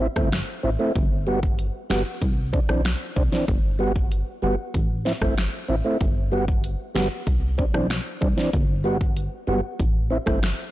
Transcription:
0.00 C4 E4
0.16 G1 A3 C4 E4, kick, cross-stick
0.32 finger snap, snare, closed hi-hat
0.63 A1 C4 E4
0.79 A3 C4 E4
0.95 G1, kick, closed hi-hat
1.27 G3 B3 F#4
1.43 kick
1.59 closed hi-hat
1.90 G1 G3 B3 F#4, finger snap, snare
2.22 C2, kick, closed hi-hat
2.53 C4 D4, kick
2.69 B1 E3 C4 D4, cross-stick
2.85 finger snap, snare, closed hi-hat
3.16 C2 C4 D4, kick
3.32 E3 C4 D4, snare
3.48 G1, kick, closed hi-hat
3.79 G3 B3 F#4
3.96 kick
4.12 closed hi-hat
4.42 G1 G3 B3 F#4
4.74 A1, kick, closed hi-hat
5.05 C4 E4, snare
5.21 G1 A3 C4 E4, kick, cross-stick
5.38 finger snap, snare, closed hi-hat
5.68 A1 C4 E4
5.84 A3 C4 E4
6.01 G1, kick, closed hi-hat
6.32 G3 B3 F#4
6.48 kick
6.64 closed hi-hat
6.95 G1 G3 B3 F#4, finger snap, snare
7.27 C2, kick, closed hi-hat
7.58 C4 D4, kick
7.74 B1 E3 C4 D4, cross-stick
7.90 finger snap, snare, closed hi-hat
8.21 C2 C4 D4, kick
8.37 E3 C4 D4, snare
8.53 G1, kick, closed hi-hat
8.84 G3 B3 F#4
9.01 kick
9.17 closed hi-hat
9.47 G1 G3 B3 F#4
9.80 A1, kick, closed hi-hat
10.10 C4 E4
10.26 G1 A3 C4 E4, kick, cross-stick
10.43 finger snap, snare, closed hi-hat

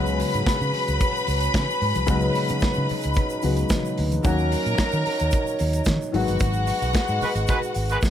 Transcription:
Already playing: C#2 C#3 F#3 G#3 B3 C#4 F#4 B4 B5
0.06 shaker
0.20 open hi-hat, muted conga, shaker
0.34 G#2, closed hi-hat, shaker
0.46 muted fingered electric bass stroke, kick, snare, closed hi-hat, high conga, shaker
0.61 C#3, shaker
0.74 open hi-hat, muted conga
0.88 C#2, closed hi-hat, shaker
1.00 kick, closed hi-hat, muted conga, shaker
1.17 shaker
1.27 C#2, open hi-hat, muted conga, shaker
1.41 closed hi-hat, shaker
1.54 C#3, kick, snare, closed hi-hat, high conga, shaker
1.70 shaker
1.82 G#2, open hi-hat
1.95 C2, closed hi-hat, high conga, shaker
2.07 C#2 C#3 F#3 G#3 B3 D#4 F#4, kick, closed hi-hat, shaker
2.20 shaker
2.34 open hi-hat, muted conga, shaker
2.48 C#3, closed hi-hat, shaker
2.60 muted fingered electric bass stroke, kick, snare, closed hi-hat, high conga, shaker
2.74 C#3, shaker
2.89 open hi-hat, muted conga, low conga
3.01 C#2, closed hi-hat, shaker
3.14 kick, closed hi-hat, shaker
3.18 muted conga, low conga
3.30 shaker
3.42 C#2 C#3 F#3 G#3 B3 F#4, open hi-hat, muted conga, shaker
3.57 closed hi-hat, shaker
3.69 kick, snare, closed hi-hat, high conga, shaker
3.85 shaker
3.98 D2, open hi-hat
4.12 closed hi-hat, high conga, shaker
4.23 D#2 D#3 F#3 A#3 C#4 F#4 A#4 C#5 A#5, kick, closed hi-hat, shaker
4.38 shaker
4.52 open hi-hat, muted conga, shaker
4.66 A#2, closed hi-hat, shaker
4.78 muted fingered electric bass stroke, kick, snare, closed hi-hat, high conga, shaker
4.92 D#3, shaker
5.06 open hi-hat, muted conga
5.19 D#2, closed hi-hat, shaker
5.31 kick, closed hi-hat, muted conga, shaker
5.47 shaker
5.59 D#2, open hi-hat, muted conga, shaker
5.73 closed hi-hat, shaker
5.85 D#3, kick, snare, closed hi-hat, high conga, shaker
6.02 shaker
6.12 G#1 D#3 F#3 G#3 B3 F#4 B4 F#5, open hi-hat
6.27 G1, closed hi-hat, high conga, shaker
6.39 G#1, kick, closed hi-hat, shaker
6.53 shaker
6.67 open hi-hat, muted conga, shaker
6.82 B1, closed hi-hat, shaker
6.93 muted fingered electric bass stroke, kick, snare, closed hi-hat, high conga, shaker
7.07 G#2, shaker
7.21 G#3 F#4 B4, open hi-hat, muted conga, low conga, shaker
7.35 G#1, closed hi-hat, shaker
7.47 G#3 F#4 B4, kick, closed hi-hat, muted conga, low conga, shaker
7.63 shaker
7.74 G#1, open hi-hat, shaker
7.89 G#3 F#4 B4, closed hi-hat, shaker
8.02 kick, snare, high conga, shaker

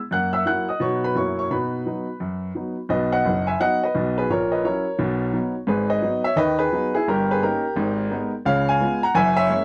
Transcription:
0.11 F#2 A#3 F#5 F#6
0.33 E5 E6
0.46 F#3 A#3 E4 F#5 F#6
0.69 D#5 D#6
0.80 B2 F#3 B3 D#4 C#5 C#6
1.04 B4 B5
1.15 F#2 F#3 A#3 E4 C#5 C#6
1.39 C#5 C#6
1.51 B2 D#4 B4 B5
1.86 F#3 B3 D#4
2.20 F#2
2.55 F#3 B3 D#4
2.89 B1 B2 B4 D#5
3.12 D#5 F#5
3.25 F#1 F#2
3.47 E5 G#5
3.60 F#3 B3 D#4 D#5 F#5
3.83 B4 D#5
3.95 B1 B2
4.18 G#4 B4
4.30 A#1 A#2 A#4 C#5
4.52 B4 D#5
4.65 F#3 C#4 E4 A#4 C#5
4.99 B1 B2
5.33 F#3 B3 D#4
5.67 G#1 G#2 G#4 B4
5.90 B4 D#5
6.02 F#3 B3 D#4
6.24 C#5 E5
6.36 D#2 D#3 B4 D#5
6.59 G#4 B4
6.72 F#3 B3 D#4
6.95 E4 G#4
7.08 G1 G2 G4 A#4
7.31 G#4 B4
7.42 A#3 C#4 D#4 G4 A#4
7.76 G#1 G#2
8.11 G#3 B3 D#4
8.45 C#2 C#3 C#5 F5
8.69 F5 G#5
8.80 G#3 B3 F4
9.03 F#5 A#5
9.15 F#1 F#2 E5 G#5
9.37 C#5 E5
9.49 G#3 A#3 C#4

